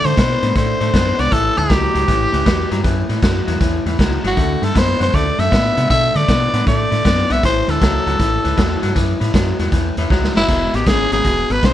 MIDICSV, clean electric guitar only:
0, 0, Header, 1, 2, 480
1, 0, Start_track
1, 0, Tempo, 381922
1, 1655, Time_signature, 4, 2, 24, 8
1, 14747, End_track
2, 0, Start_track
2, 0, Title_t, "Clean electric guitar"
2, 0, Program_c, 0, 27
2, 48, Note_on_c, 0, 50, 59
2, 56, Note_on_c, 0, 57, 73
2, 197, Note_off_c, 0, 50, 0
2, 201, Note_off_c, 0, 57, 0
2, 210, Note_on_c, 0, 50, 72
2, 219, Note_on_c, 0, 59, 88
2, 498, Note_off_c, 0, 50, 0
2, 503, Note_off_c, 0, 59, 0
2, 533, Note_on_c, 0, 50, 74
2, 539, Note_on_c, 0, 59, 76
2, 676, Note_off_c, 0, 50, 0
2, 682, Note_off_c, 0, 59, 0
2, 691, Note_on_c, 0, 50, 66
2, 697, Note_on_c, 0, 57, 85
2, 979, Note_off_c, 0, 50, 0
2, 982, Note_off_c, 0, 57, 0
2, 1015, Note_on_c, 0, 50, 70
2, 1020, Note_on_c, 0, 57, 76
2, 1154, Note_off_c, 0, 50, 0
2, 1163, Note_off_c, 0, 57, 0
2, 1169, Note_on_c, 0, 50, 85
2, 1176, Note_on_c, 0, 59, 98
2, 1458, Note_off_c, 0, 50, 0
2, 1461, Note_off_c, 0, 59, 0
2, 1488, Note_on_c, 0, 50, 68
2, 1491, Note_on_c, 0, 59, 76
2, 1637, Note_off_c, 0, 50, 0
2, 1638, Note_off_c, 0, 59, 0
2, 1654, Note_on_c, 0, 45, 71
2, 1662, Note_on_c, 0, 52, 98
2, 1940, Note_off_c, 0, 45, 0
2, 1944, Note_off_c, 0, 52, 0
2, 1963, Note_on_c, 0, 45, 60
2, 1973, Note_on_c, 0, 52, 76
2, 2115, Note_off_c, 0, 45, 0
2, 2119, Note_off_c, 0, 52, 0
2, 2129, Note_on_c, 0, 45, 79
2, 2132, Note_on_c, 0, 54, 96
2, 2417, Note_off_c, 0, 45, 0
2, 2419, Note_off_c, 0, 54, 0
2, 2439, Note_on_c, 0, 45, 68
2, 2444, Note_on_c, 0, 54, 78
2, 2589, Note_off_c, 0, 45, 0
2, 2595, Note_off_c, 0, 54, 0
2, 2604, Note_on_c, 0, 45, 70
2, 2609, Note_on_c, 0, 52, 85
2, 2895, Note_off_c, 0, 45, 0
2, 2898, Note_off_c, 0, 52, 0
2, 2921, Note_on_c, 0, 45, 71
2, 2931, Note_on_c, 0, 52, 70
2, 3070, Note_off_c, 0, 45, 0
2, 3078, Note_off_c, 0, 52, 0
2, 3086, Note_on_c, 0, 45, 78
2, 3090, Note_on_c, 0, 54, 93
2, 3376, Note_off_c, 0, 45, 0
2, 3378, Note_off_c, 0, 54, 0
2, 3405, Note_on_c, 0, 45, 65
2, 3411, Note_on_c, 0, 54, 80
2, 3551, Note_off_c, 0, 45, 0
2, 3558, Note_off_c, 0, 54, 0
2, 3566, Note_on_c, 0, 45, 75
2, 3571, Note_on_c, 0, 52, 82
2, 3856, Note_off_c, 0, 45, 0
2, 3859, Note_off_c, 0, 52, 0
2, 3887, Note_on_c, 0, 45, 67
2, 3893, Note_on_c, 0, 52, 68
2, 4036, Note_off_c, 0, 45, 0
2, 4039, Note_off_c, 0, 52, 0
2, 4053, Note_on_c, 0, 45, 76
2, 4058, Note_on_c, 0, 54, 89
2, 4340, Note_off_c, 0, 45, 0
2, 4342, Note_off_c, 0, 54, 0
2, 4365, Note_on_c, 0, 45, 74
2, 4369, Note_on_c, 0, 54, 76
2, 4515, Note_off_c, 0, 45, 0
2, 4517, Note_off_c, 0, 54, 0
2, 4529, Note_on_c, 0, 45, 73
2, 4535, Note_on_c, 0, 52, 79
2, 4818, Note_off_c, 0, 45, 0
2, 4821, Note_off_c, 0, 52, 0
2, 4852, Note_on_c, 0, 45, 63
2, 4858, Note_on_c, 0, 52, 72
2, 4999, Note_off_c, 0, 45, 0
2, 5002, Note_off_c, 0, 52, 0
2, 5013, Note_on_c, 0, 45, 81
2, 5018, Note_on_c, 0, 54, 84
2, 5300, Note_off_c, 0, 45, 0
2, 5302, Note_off_c, 0, 54, 0
2, 5327, Note_on_c, 0, 45, 62
2, 5331, Note_on_c, 0, 54, 83
2, 5477, Note_off_c, 0, 45, 0
2, 5479, Note_off_c, 0, 54, 0
2, 5489, Note_on_c, 0, 50, 71
2, 5497, Note_on_c, 0, 57, 76
2, 5778, Note_off_c, 0, 50, 0
2, 5782, Note_off_c, 0, 57, 0
2, 5805, Note_on_c, 0, 50, 64
2, 5810, Note_on_c, 0, 57, 64
2, 5950, Note_off_c, 0, 50, 0
2, 5958, Note_off_c, 0, 57, 0
2, 5965, Note_on_c, 0, 50, 74
2, 5971, Note_on_c, 0, 59, 76
2, 6256, Note_off_c, 0, 50, 0
2, 6259, Note_off_c, 0, 59, 0
2, 6282, Note_on_c, 0, 50, 67
2, 6287, Note_on_c, 0, 59, 78
2, 6434, Note_off_c, 0, 50, 0
2, 6437, Note_off_c, 0, 59, 0
2, 6453, Note_on_c, 0, 50, 81
2, 6458, Note_on_c, 0, 57, 85
2, 6740, Note_off_c, 0, 50, 0
2, 6743, Note_off_c, 0, 57, 0
2, 6768, Note_on_c, 0, 50, 67
2, 6770, Note_on_c, 0, 57, 73
2, 6917, Note_off_c, 0, 50, 0
2, 6918, Note_off_c, 0, 57, 0
2, 6932, Note_on_c, 0, 50, 80
2, 6938, Note_on_c, 0, 59, 87
2, 7220, Note_off_c, 0, 50, 0
2, 7222, Note_off_c, 0, 59, 0
2, 7248, Note_on_c, 0, 50, 63
2, 7257, Note_on_c, 0, 59, 74
2, 7398, Note_off_c, 0, 50, 0
2, 7402, Note_off_c, 0, 59, 0
2, 7417, Note_on_c, 0, 50, 84
2, 7420, Note_on_c, 0, 57, 73
2, 7702, Note_off_c, 0, 50, 0
2, 7704, Note_off_c, 0, 57, 0
2, 7724, Note_on_c, 0, 50, 62
2, 7735, Note_on_c, 0, 57, 71
2, 7875, Note_off_c, 0, 50, 0
2, 7881, Note_off_c, 0, 57, 0
2, 7895, Note_on_c, 0, 50, 80
2, 7903, Note_on_c, 0, 59, 83
2, 8181, Note_off_c, 0, 50, 0
2, 8185, Note_off_c, 0, 59, 0
2, 8215, Note_on_c, 0, 50, 77
2, 8215, Note_on_c, 0, 59, 80
2, 8355, Note_off_c, 0, 50, 0
2, 8361, Note_off_c, 0, 59, 0
2, 8370, Note_on_c, 0, 50, 67
2, 8378, Note_on_c, 0, 57, 80
2, 8659, Note_off_c, 0, 50, 0
2, 8663, Note_off_c, 0, 57, 0
2, 8686, Note_on_c, 0, 50, 66
2, 8693, Note_on_c, 0, 57, 75
2, 8837, Note_off_c, 0, 50, 0
2, 8840, Note_off_c, 0, 57, 0
2, 8852, Note_on_c, 0, 50, 78
2, 8858, Note_on_c, 0, 59, 92
2, 9140, Note_off_c, 0, 50, 0
2, 9143, Note_off_c, 0, 59, 0
2, 9171, Note_on_c, 0, 50, 69
2, 9174, Note_on_c, 0, 59, 82
2, 9319, Note_off_c, 0, 50, 0
2, 9321, Note_off_c, 0, 59, 0
2, 9341, Note_on_c, 0, 45, 73
2, 9344, Note_on_c, 0, 52, 85
2, 9625, Note_off_c, 0, 45, 0
2, 9626, Note_off_c, 0, 52, 0
2, 9653, Note_on_c, 0, 45, 65
2, 9659, Note_on_c, 0, 52, 70
2, 9801, Note_off_c, 0, 45, 0
2, 9804, Note_off_c, 0, 52, 0
2, 9819, Note_on_c, 0, 45, 84
2, 9823, Note_on_c, 0, 54, 85
2, 10104, Note_off_c, 0, 45, 0
2, 10106, Note_off_c, 0, 54, 0
2, 10133, Note_on_c, 0, 45, 60
2, 10141, Note_on_c, 0, 54, 74
2, 10281, Note_off_c, 0, 45, 0
2, 10285, Note_off_c, 0, 54, 0
2, 10294, Note_on_c, 0, 45, 76
2, 10305, Note_on_c, 0, 52, 73
2, 10581, Note_off_c, 0, 45, 0
2, 10587, Note_off_c, 0, 52, 0
2, 10608, Note_on_c, 0, 45, 68
2, 10613, Note_on_c, 0, 52, 75
2, 10758, Note_off_c, 0, 45, 0
2, 10761, Note_off_c, 0, 52, 0
2, 10773, Note_on_c, 0, 45, 88
2, 10774, Note_on_c, 0, 54, 82
2, 11061, Note_off_c, 0, 45, 0
2, 11062, Note_off_c, 0, 54, 0
2, 11088, Note_on_c, 0, 45, 63
2, 11096, Note_on_c, 0, 54, 84
2, 11236, Note_off_c, 0, 45, 0
2, 11242, Note_off_c, 0, 54, 0
2, 11251, Note_on_c, 0, 45, 69
2, 11255, Note_on_c, 0, 52, 84
2, 11540, Note_off_c, 0, 45, 0
2, 11542, Note_off_c, 0, 52, 0
2, 11566, Note_on_c, 0, 45, 65
2, 11573, Note_on_c, 0, 52, 67
2, 11717, Note_off_c, 0, 45, 0
2, 11721, Note_off_c, 0, 52, 0
2, 11737, Note_on_c, 0, 45, 81
2, 11746, Note_on_c, 0, 54, 91
2, 12023, Note_off_c, 0, 45, 0
2, 12028, Note_off_c, 0, 54, 0
2, 12059, Note_on_c, 0, 45, 66
2, 12063, Note_on_c, 0, 54, 78
2, 12204, Note_off_c, 0, 45, 0
2, 12206, Note_off_c, 0, 54, 0
2, 12219, Note_on_c, 0, 45, 70
2, 12220, Note_on_c, 0, 52, 70
2, 12504, Note_off_c, 0, 45, 0
2, 12505, Note_off_c, 0, 52, 0
2, 12545, Note_on_c, 0, 45, 62
2, 12550, Note_on_c, 0, 52, 71
2, 12687, Note_off_c, 0, 45, 0
2, 12690, Note_off_c, 0, 52, 0
2, 12700, Note_on_c, 0, 45, 81
2, 12706, Note_on_c, 0, 54, 92
2, 12985, Note_off_c, 0, 45, 0
2, 12988, Note_off_c, 0, 54, 0
2, 13016, Note_on_c, 0, 45, 69
2, 13025, Note_on_c, 0, 54, 67
2, 13163, Note_off_c, 0, 45, 0
2, 13167, Note_off_c, 0, 54, 0
2, 13183, Note_on_c, 0, 40, 67
2, 13189, Note_on_c, 0, 47, 80
2, 13466, Note_off_c, 0, 40, 0
2, 13470, Note_off_c, 0, 47, 0
2, 13498, Note_on_c, 0, 40, 63
2, 13509, Note_on_c, 0, 47, 65
2, 13639, Note_off_c, 0, 40, 0
2, 13649, Note_off_c, 0, 47, 0
2, 13655, Note_on_c, 0, 40, 71
2, 13662, Note_on_c, 0, 49, 88
2, 13942, Note_off_c, 0, 40, 0
2, 13946, Note_off_c, 0, 49, 0
2, 13973, Note_on_c, 0, 40, 71
2, 13975, Note_on_c, 0, 49, 67
2, 14116, Note_off_c, 0, 40, 0
2, 14122, Note_off_c, 0, 49, 0
2, 14131, Note_on_c, 0, 40, 76
2, 14138, Note_on_c, 0, 47, 85
2, 14421, Note_off_c, 0, 40, 0
2, 14424, Note_off_c, 0, 47, 0
2, 14450, Note_on_c, 0, 40, 64
2, 14456, Note_on_c, 0, 47, 70
2, 14593, Note_off_c, 0, 40, 0
2, 14603, Note_off_c, 0, 47, 0
2, 14608, Note_on_c, 0, 40, 80
2, 14615, Note_on_c, 0, 49, 81
2, 14747, Note_off_c, 0, 40, 0
2, 14747, Note_off_c, 0, 49, 0
2, 14747, End_track
0, 0, End_of_file